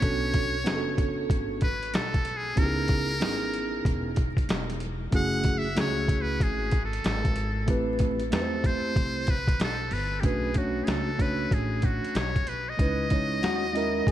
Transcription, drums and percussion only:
0.02 kick loud
0.02 closed hi-hat medium
0.34 kick medium
0.34 closed hi-hat medium
0.66 snare loud
0.66 closed hi-hat medium
0.98 kick loud
0.98 closed hi-hat medium
1.30 kick loud
1.30 closed hi-hat loud
1.61 kick loud
1.61 closed hi-hat medium
1.83 closed hi-hat medium
1.94 snare loud
1.94 closed hi-hat medium
2.14 kick medium
2.14 closed hi-hat soft
2.25 closed hi-hat medium
2.57 kick loud
2.57 closed hi-hat medium
2.88 kick medium
2.88 closed hi-hat medium
3.21 snare loud
3.21 closed hi-hat medium
3.54 closed hi-hat medium
3.85 kick loud
3.85 closed hi-hat medium
4.16 kick loud
4.16 closed hi-hat medium
4.37 kick medium
4.37 closed hi-hat medium
4.49 snare loud
4.49 closed hi-hat medium
4.70 closed hi-hat medium
4.80 closed hi-hat medium
5.12 kick loud
5.12 closed hi-hat medium
5.44 kick medium
5.44 closed hi-hat medium
5.77 snare loud
5.77 closed hi-hat loud
6.08 kick loud
6.08 closed hi-hat medium
6.40 kick loud
6.40 closed hi-hat medium
6.71 kick loud
6.71 closed hi-hat medium
6.93 closed hi-hat medium
7.04 snare loud
7.04 closed hi-hat medium
7.25 kick loud
7.25 closed hi-hat medium
7.36 closed hi-hat medium
7.68 kick loud
7.68 closed hi-hat medium
7.99 kick medium
7.99 closed hi-hat medium
8.20 closed hi-hat soft
8.32 snare loud
8.32 closed hi-hat medium
8.64 kick loud
8.64 closed hi-hat medium
8.96 kick loud
8.96 closed hi-hat medium
9.27 kick loud
9.27 closed hi-hat medium
9.48 kick loud
9.48 closed hi-hat medium
9.60 snare loud
9.60 closed hi-hat medium
9.91 open hi-hat soft
10.23 kick medium
10.23 closed hi-hat medium
10.54 kick medium
10.54 closed hi-hat medium
10.87 snare medium
10.87 closed hi-hat medium
11.19 kick medium
11.19 closed hi-hat medium
11.51 kick loud
11.51 closed hi-hat medium
11.82 kick medium
11.82 closed hi-hat medium
12.04 closed hi-hat soft
12.15 snare loud
12.15 closed hi-hat medium
12.36 kick medium
12.36 closed hi-hat soft
12.47 closed hi-hat medium
12.79 kick loud
12.79 closed hi-hat medium
13.10 kick medium
13.10 closed hi-hat medium
13.43 snare medium
13.43 closed hi-hat medium
13.76 closed hi-hat medium
14.07 kick loud
14.07 closed hi-hat medium

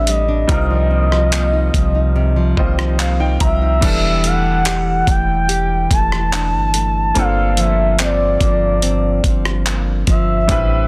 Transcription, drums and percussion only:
0.07 closed hi-hat medium
0.49 kick loud
0.49 closed hi-hat medium
1.12 cross-stick medium
1.32 clap loud
1.32 closed hi-hat medium
1.74 kick medium
1.74 closed hi-hat medium
2.57 kick medium
2.79 cross-stick medium
2.99 clap loud
2.99 closed hi-hat medium
3.40 kick medium
3.40 closed hi-hat medium
3.82 kick loud
3.82 closed hi-hat medium
3.82 crash loud
4.24 closed hi-hat medium
4.65 clap loud
4.65 closed hi-hat medium
5.07 kick medium
5.07 closed hi-hat medium
5.49 closed hi-hat medium
5.91 kick medium
5.91 closed hi-hat medium
6.12 cross-stick medium
6.32 clap loud
6.32 closed hi-hat medium
6.74 closed hi-hat medium
7.15 closed hi-hat medium
7.57 closed hi-hat medium
7.99 clap loud
7.99 closed hi-hat medium
8.41 kick medium
8.41 closed hi-hat medium
8.82 closed hi-hat medium
9.24 kick loud
9.24 closed hi-hat medium
9.45 cross-stick medium
9.66 clap loud
9.66 closed hi-hat medium
10.07 kick loud
10.07 closed hi-hat medium
10.49 kick loud
10.49 closed hi-hat medium

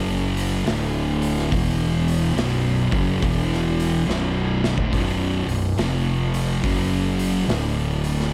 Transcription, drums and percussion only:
0.37 open hi-hat medium
0.67 snare loud
0.67 open hi-hat medium
1.22 open hi-hat medium
1.39 snare soft
1.52 kick loud
1.52 open hi-hat medium
2.08 open hi-hat medium
2.38 snare loud
2.38 open hi-hat medium
2.92 kick loud
2.92 open hi-hat medium
3.23 kick loud
3.23 open hi-hat medium
3.53 snare soft
3.80 open hi-hat medium
4.10 snare medium
4.64 snare medium
4.78 kick medium
4.93 kick loud
4.93 open hi-hat medium
5.49 open hi-hat medium
5.78 snare loud
5.78 open hi-hat medium
6.34 open hi-hat medium
6.64 kick loud
6.64 open hi-hat medium
7.19 open hi-hat medium
7.49 snare loud
7.49 open hi-hat medium
8.04 open hi-hat medium
8.20 snare soft

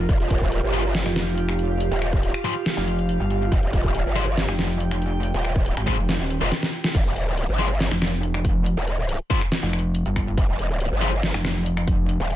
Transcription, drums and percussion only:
0.09 kick loud
0.09 closed hi-hat medium
0.20 closed hi-hat soft
0.30 kick loud
0.30 closed hi-hat medium
0.41 kick medium
0.52 closed hi-hat medium
0.73 open hi-hat medium
0.79 closed hi-hat medium
0.95 snare loud
0.95 closed hi-hat medium
1.06 finger snap medium
1.16 snare medium
1.16 closed hi-hat medium
1.27 closed hi-hat soft
1.38 closed hi-hat medium
1.49 finger snap medium
1.59 closed hi-hat soft
1.80 closed hi-hat medium
1.91 closed hi-hat soft
2.02 finger snap medium
2.02 closed hi-hat medium
2.13 kick loud
2.23 closed hi-hat medium
2.34 finger snap medium
2.45 finger snap medium
2.45 open hi-hat loud
2.50 closed hi-hat medium
2.66 snare loud
2.66 closed hi-hat medium
2.88 closed hi-hat medium
2.99 closed hi-hat soft
3.09 closed hi-hat medium
3.30 closed hi-hat soft
3.52 kick loud
3.52 closed hi-hat medium
3.63 closed hi-hat soft
3.73 kick loud
3.73 closed hi-hat medium
3.84 kick medium
3.95 closed hi-hat medium
4.16 open hi-hat loud
4.22 closed hi-hat medium
4.37 snare loud
4.37 closed hi-hat medium
4.49 finger snap medium
4.59 snare medium
4.59 closed hi-hat medium
4.70 closed hi-hat soft
4.80 closed hi-hat medium
4.91 finger snap medium
5.02 closed hi-hat medium
5.23 closed hi-hat medium
5.34 closed hi-hat soft
5.45 finger snap medium
5.45 closed hi-hat medium
5.56 kick loud
5.66 closed hi-hat medium
5.77 finger snap medium
5.87 finger snap medium
5.87 kick medium
5.87 open hi-hat loud
5.93 closed hi-hat medium
6.09 snare loud
6.09 closed hi-hat medium
6.30 closed hi-hat medium
6.41 closed hi-hat soft
6.52 snare medium
6.52 closed hi-hat medium
6.63 snare medium
6.73 closed hi-hat medium
6.84 snare medium
6.95 kick loud
6.95 closed hi-hat medium
6.95 crash loud
7.16 closed hi-hat medium
7.38 closed hi-hat medium
7.59 closed hi-hat medium
7.80 snare loud
7.80 closed hi-hat medium
7.91 finger snap medium
8.02 finger snap medium
8.02 snare medium
8.02 closed hi-hat medium
8.07 closed hi-hat medium
8.23 closed hi-hat medium
8.34 finger snap medium
8.34 closed hi-hat soft
8.45 kick loud
8.45 open hi-hat loud
8.66 closed hi-hat medium
8.88 closed hi-hat medium
9.09 closed hi-hat medium
9.30 kick loud
9.30 closed hi-hat medium
9.41 finger snap medium
9.41 closed hi-hat soft
9.52 snare loud
9.52 closed hi-hat medium
9.73 finger snap medium
9.73 closed hi-hat medium
9.79 closed hi-hat medium
9.95 closed hi-hat medium
10.06 closed hi-hat soft
10.16 finger snap soft
10.16 kick medium
10.16 open hi-hat medium
10.38 kick loud
10.38 closed hi-hat medium
10.59 closed hi-hat medium
10.80 closed hi-hat medium
11.02 closed hi-hat medium
11.23 snare loud
11.23 closed hi-hat medium
11.34 finger snap medium
11.45 finger snap medium
11.45 snare medium
11.45 closed hi-hat medium
11.50 closed hi-hat medium
11.66 closed hi-hat medium
11.77 finger snap medium
11.77 closed hi-hat soft
11.87 kick loud
11.87 open hi-hat medium
12.09 closed hi-hat medium
12.30 closed hi-hat medium

